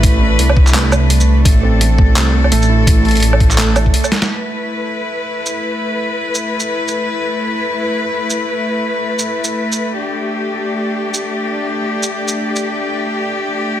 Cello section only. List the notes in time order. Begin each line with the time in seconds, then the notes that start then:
Already playing: A3 D4 B4
1.45 A4
4.29 A3 E4 B4
9.97 D4 G4